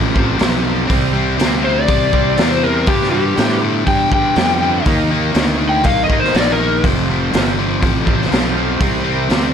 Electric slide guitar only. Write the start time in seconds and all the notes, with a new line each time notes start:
1.64 C5
1.76 D5
2.51 C5
2.64 A#4
2.87 G4
3.11 G4
3.88 G5
4.14 G5
5.69 G5
5.85 F5
6.04 D#5
6.20 C5
6.36 D5
6.52 A#4